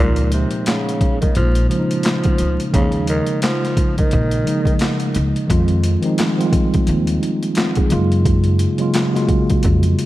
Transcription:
0.00 0.43 C#2 loud
0.00 0.30 A#2 loud
0.00 1.26 A#2 medium
0.00 1.27 F3 medium
0.00 1.27 G#3 medium
0.00 1.28 A#3 medium
0.00 1.28 D#4 medium
0.16 closed hi-hat medium
0.32 0.64 C3 medium
0.32 closed hi-hat medium
0.51 closed hi-hat medium
0.66 1.18 C#3 medium
0.66 snare loud
0.66 clap loud
0.66 closed hi-hat loud
0.89 closed hi-hat medium
1.01 kick loud
1.01 closed hi-hat medium
1.21 1.34 D#3 medium
1.21 kick medium
1.21 closed hi-hat medium
1.35 1.64 A#1 loud
1.35 1.67 F3 medium
1.35 closed hi-hat medium
1.55 closed hi-hat medium
1.69 2.67 C#3 medium
1.69 2.69 F3 medium
1.69 2.67 F3 medium
1.69 2.68 G#3 medium
1.69 2.68 A#3 medium
1.69 1.79 C#4 medium
1.69 closed hi-hat medium
1.79 2.72 D#4 medium
1.91 closed hi-hat medium
2.03 snare loud
2.03 clap medium
2.03 closed hi-hat medium
2.24 kick loud
2.24 closed hi-hat soft
2.38 2.56 C#2 medium
2.38 closed hi-hat medium
2.60 closed hi-hat soft
2.72 3.18 D#2 loud
2.72 4.02 C#3 medium
2.72 3.05 C#3 loud
2.72 4.03 F3 medium
2.72 4.03 G#3 medium
2.72 4.04 A#3 medium
2.72 4.04 D#4 medium
2.72 kick loud
2.72 closed hi-hat loud
2.92 closed hi-hat medium
3.07 3.40 D#3 medium
3.07 closed hi-hat medium
3.27 closed hi-hat medium
3.42 3.94 F3 medium
3.42 snare loud
3.42 clap loud
3.42 closed hi-hat loud
3.64 snare soft
3.64 closed hi-hat medium
3.77 kick loud
3.77 closed hi-hat medium
3.98 4.77 D#3 medium
3.98 kick medium
3.98 closed hi-hat medium
4.11 4.41 A#1 loud
4.11 kick loud
4.11 closed hi-hat medium
4.31 closed hi-hat medium
4.44 5.42 C#3 medium
4.44 5.43 F3 medium
4.44 5.43 G#3 medium
4.44 5.44 A#3 medium
4.44 5.44 D#4 medium
4.44 closed hi-hat medium
4.65 kick medium
4.65 closed hi-hat soft
4.79 snare loud
4.79 clap medium
4.79 closed hi-hat medium
5.00 closed hi-hat soft
5.15 5.32 C#2 loud
5.15 closed hi-hat medium
5.36 closed hi-hat soft
5.47 5.94 F2 loud
5.47 5.98 D#3 medium
5.47 5.99 F3 medium
5.47 5.99 G#3 medium
5.47 6.00 C4 medium
5.47 kick loud
5.47 closed hi-hat loud
5.51 6.00 F4 loud
5.68 closed hi-hat medium
5.83 closed hi-hat medium
6.02 6.34 D#3 medium
6.02 6.35 F3 medium
6.02 6.35 G#3 medium
6.02 6.36 C4 medium
6.02 closed hi-hat medium
6.06 6.36 D#4 loud
6.18 snare loud
6.18 clap loud
6.18 closed hi-hat loud
6.37 7.64 D#3 medium
6.37 7.64 F3 medium
6.37 6.44 G3 medium
6.37 7.23 C4 medium
6.37 7.23 F4 loud
6.37 closed hi-hat medium
6.45 7.68 G#3 medium
6.53 kick loud
6.53 closed hi-hat medium
6.74 kick medium
6.74 closed hi-hat medium
6.87 7.16 D#2 loud
6.87 closed hi-hat medium
7.07 closed hi-hat medium
7.22 7.55 A#3 medium
7.22 7.54 D#4 medium
7.22 closed hi-hat medium
7.43 closed hi-hat soft
7.55 7.76 C4 medium
7.55 7.76 F4 medium
7.55 snare loud
7.55 clap medium
7.55 closed hi-hat medium
7.75 8.10 D#4 medium
7.75 8.09 G#4 medium
7.75 kick medium
7.75 closed hi-hat soft
7.89 8.64 F#2 loud
7.89 8.72 C#3 loud
7.89 8.72 F#3 medium
7.89 8.73 G#3 medium
7.89 8.73 A#3 medium
7.89 8.74 F4 loud
7.89 closed hi-hat medium
8.12 closed hi-hat soft
8.25 kick loud
8.25 closed hi-hat loud
8.44 closed hi-hat medium
8.59 closed hi-hat medium
8.78 9.10 C#3 medium
8.78 9.11 F#3 medium
8.78 9.11 G#3 medium
8.78 9.12 A#3 medium
8.78 9.12 F4 loud
8.78 closed hi-hat medium
8.94 snare loud
8.94 clap loud
8.94 closed hi-hat loud
9.13 10.06 C#3 medium
9.13 10.06 G#3 medium
9.13 10.06 A#3 medium
9.13 9.99 F4 loud
9.13 10.06 F#4 medium
9.13 snare soft
9.13 closed hi-hat medium
9.28 kick loud
9.28 closed hi-hat medium
9.50 kick medium
9.50 closed hi-hat medium
9.63 9.92 F2 loud
9.63 kick medium
9.63 closed hi-hat medium
9.83 closed hi-hat medium
9.99 closed hi-hat medium

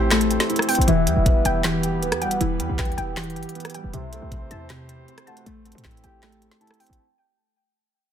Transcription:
0.00 0.38 A1 loud
0.00 3.90 E3 medium
0.00 0.11 A3 loud
0.00 0.31 A3 loud
0.00 0.85 A3 medium
0.00 0.50 C4 medium
0.00 0.48 E4 loud
0.00 0.85 G4 medium
0.00 0.88 G4 medium
0.00 0.85 C5 medium
0.00 0.67 G5 medium
0.11 0.88 A3 medium
0.11 0.88 A4 loud
0.11 snare loud
0.11 clap medium
0.11 closed hi-hat medium
0.21 closed hi-hat medium
0.31 closed hi-hat medium
0.40 snare medium
0.40 closed hi-hat medium
0.50 0.88 E4 medium
0.50 closed hi-hat soft
0.56 cross-stick loud
0.56 closed hi-hat medium
0.62 closed hi-hat medium
0.69 0.88 C4 medium
0.69 0.88 G5 loud
0.69 closed hi-hat medium
0.69 open hi-hat medium
0.75 0.87 A1 loud
0.75 closed hi-hat medium
0.81 closed hi-hat medium
0.88 1.08 E1 loud
0.88 1.63 E3 loud
0.88 1.83 E3 loud
0.88 3.90 B3 medium
0.88 5.42 G4 medium
0.88 3.90 B4 medium
0.88 1.60 E5 loud
0.88 closed hi-hat medium
1.07 1.16 E2 loud
1.07 2.03 G3 medium
1.07 closed hi-hat medium
1.16 1.44 E1 loud
1.26 2.01 B3 medium
1.26 kick loud
1.26 closed hi-hat medium
1.45 2.14 E1 loud
1.45 2.41 E4 medium
1.45 2.20 G5 loud
1.45 closed hi-hat medium
1.64 2.40 E3 medium
1.64 2.60 G4 loud
1.64 snare loud
1.64 clap medium
1.64 closed hi-hat medium
1.83 closed hi-hat medium
2.02 2.77 B3 medium
2.02 closed hi-hat soft
2.12 2.28 E2 loud
2.12 cross-stick loud
2.12 closed hi-hat medium
2.22 2.58 G3 medium
2.22 2.40 F#5 medium
2.22 2.96 G5 medium
2.22 closed hi-hat soft
2.26 2.40 E1 loud
2.31 closed hi-hat medium
2.41 2.61 E1 loud
2.41 3.36 E3 loud
2.41 3.16 E3 loud
2.41 closed hi-hat medium
2.60 2.69 E2 loud
2.60 3.55 G3 medium
2.60 closed hi-hat medium
2.69 2.90 B1 loud
2.79 3.54 B3 medium
2.79 3.51 G5 medium
2.79 kick loud
2.79 snare loud
2.79 clap medium
2.79 closed hi-hat medium
2.85 2.98 E2 loud
2.85 closed hi-hat medium
2.92 closed hi-hat soft
2.98 3.38 E1 loud
2.98 3.94 E4 medium
2.98 3.73 G5 loud
2.98 closed hi-hat medium
3.17 3.93 E3 medium
3.17 3.94 G4 loud
3.17 snare loud
3.17 clap loud
3.17 closed hi-hat medium
3.23 closed hi-hat medium
3.30 closed hi-hat soft
3.36 3.45 G1 loud
3.36 closed hi-hat soft
3.43 closed hi-hat medium
3.49 closed hi-hat medium
3.55 3.94 B3 medium
3.55 closed hi-hat soft
3.60 closed hi-hat medium
3.65 cross-stick loud
3.65 closed hi-hat medium
3.70 closed hi-hat medium
3.74 3.94 G3 medium
3.74 3.94 G5 medium
3.74 closed hi-hat medium
3.84 3.93 E1 loud
3.93 4.21 C2 loud
3.93 4.89 C3 medium
3.93 4.69 C3 medium
3.93 6.96 E3 medium
3.93 5.45 A3 medium
3.93 6.96 C5 medium
3.93 4.66 E5 loud
3.93 closed hi-hat medium
4.13 5.08 A3 medium
4.13 closed hi-hat medium
4.22 4.50 C2 loud
4.32 5.07 C4 medium
4.32 kick loud
4.32 closed hi-hat medium
4.51 5.06 E2 loud
4.51 5.46 E4 medium
4.51 5.26 A5 medium
4.51 closed hi-hat medium
4.70 5.46 C3 medium
4.70 5.46 G4 loud
4.70 snare loud
4.70 clap medium
4.70 closed hi-hat medium
4.89 closed hi-hat medium
5.08 5.46 C4 medium
5.08 closed hi-hat soft
5.18 cross-stick loud
5.18 closed hi-hat medium
5.27 5.45 A3 medium
5.27 5.45 F#5 medium
5.27 5.46 A5 medium
5.27 closed hi-hat soft
5.37 closed hi-hat medium
5.46 5.74 A1 loud
5.46 6.22 A3 loud
5.46 6.98 A3 medium
5.46 6.42 A3 loud
5.46 6.98 G4 medium
5.46 closed hi-hat medium
5.65 6.61 C4 medium
5.65 closed hi-hat medium
5.72 6.03 A2 loud
5.72 closed hi-hat medium
5.78 closed hi-hat medium
5.84 6.59 E4 loud
5.84 6.57 G5 medium
5.84 kick loud
5.84 snare loud
5.84 clap medium
5.84 closed hi-hat soft
5.91 closed hi-hat medium
5.97 closed hi-hat medium
6.04 6.50 A1 loud
6.04 6.99 G4 medium
6.04 6.79 G5 medium
6.04 closed hi-hat medium
6.23 6.99 A3 medium
6.23 6.99 A4 loud
6.23 snare loud
6.23 clap medium
6.23 closed hi-hat medium
6.32 closed hi-hat medium
6.42 closed hi-hat medium
6.51 snare medium
6.51 closed hi-hat medium
6.61 6.99 E4 medium
6.61 6.79 A5 medium
6.61 closed hi-hat soft
6.67 cross-stick loud
6.67 closed hi-hat medium
6.74 closed hi-hat medium
6.80 6.99 C4 medium
6.80 6.99 G5 medium
6.80 6.98 G5 medium
6.80 closed hi-hat medium
6.80 open hi-hat medium
6.87 6.99 A1 loud
6.87 closed hi-hat medium
6.93 closed hi-hat medium

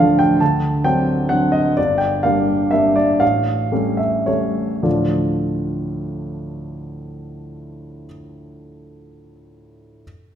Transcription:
0.00 0.42 D2 medium
0.00 0.42 F3 soft
0.00 0.43 A3 soft
0.00 0.43 D4 soft
0.00 0.43 C5 medium
0.00 0.43 D5 medium
0.00 0.19 F5 medium
0.19 0.40 G5 medium
0.40 0.84 D2 soft
0.40 0.84 A5 medium
0.84 1.27 F#3 soft
0.84 1.28 C4 soft
0.84 1.28 D4 soft
0.84 1.31 G5 medium
1.29 1.73 F#3 soft
1.29 1.73 C4 soft
1.29 1.73 D4 soft
1.29 1.53 F#5 medium
1.52 1.76 D#5 medium
1.77 2.23 G1 soft
1.77 2.00 D5 medium
1.98 2.23 G5 medium
2.23 2.69 G3 soft
2.23 2.69 A#3 soft
2.23 2.69 D4 soft
2.23 2.72 F5 medium
2.71 3.17 G3 soft
2.71 3.17 A#3 soft
2.71 3.17 D4 soft
2.71 2.96 E5 medium
2.96 3.20 D5 medium
3.20 3.71 A1 soft
3.20 3.99 F5 medium
3.72 4.24 G3 soft
3.72 4.24 A3 soft
3.72 4.24 C#4 soft
3.97 4.27 E5 medium
4.26 4.81 G3 soft
4.26 4.81 A3 soft
4.26 4.81 C#4 soft
4.26 4.84 C#5 soft
4.83 8.05 D2 soft
4.83 8.05 A2 soft
4.83 8.05 F3 soft
4.83 8.06 A3 soft
4.83 8.06 D4 soft
4.83 8.06 F4 soft
4.83 8.05 D5 soft

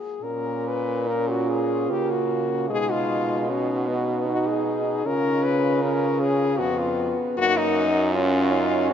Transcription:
0.00 0.25 G#4 medium
0.22 1.91 A#2 medium
0.22 1.09 C#4 medium
0.22 0.69 A#4 loud
0.68 1.09 B4 medium
1.07 1.92 C#4 medium
1.07 2.70 F4 medium
1.07 1.31 A#4 loud
1.30 1.51 F#4 medium
1.49 1.92 G#4 medium
1.89 2.72 C#3 medium
1.89 2.69 A#3 medium
1.89 2.12 G4 medium
2.11 2.69 F#4 medium
2.68 5.05 B2 medium
2.68 3.50 G#3 medium
2.68 3.48 D#4 medium
2.68 2.93 G#4 loud
2.91 3.52 F4 loud
3.48 3.90 C#4 loud
3.48 5.09 D#4 medium
3.48 4.29 F#4 medium
3.88 4.29 B3 medium
4.27 5.06 D#4 medium
4.27 4.49 F#4 loud
4.48 5.08 G#4 medium
5.05 6.62 C#3 medium
5.05 5.83 C#4 loud
5.05 7.12 F4 medium
5.05 5.45 A#4 loud
5.43 5.84 B4 loud
5.83 6.60 C#4 loud
5.83 6.21 A#4 loud
6.20 6.59 G#4 loud
6.58 7.12 F2 medium
6.58 7.39 B3 medium
6.58 6.80 F#4 loud
6.78 7.17 F4 medium
7.37 8.92 F#2 loud
7.37 7.88 A#3 medium
7.37 8.18 D#4 medium
7.37 7.59 F#4 loud
7.57 8.15 D#4 loud
8.13 8.53 C#4 loud
8.13 8.93 C#4 loud
8.13 8.91 F4 loud
8.52 8.92 D#4 loud
8.90 8.93 F#4 loud

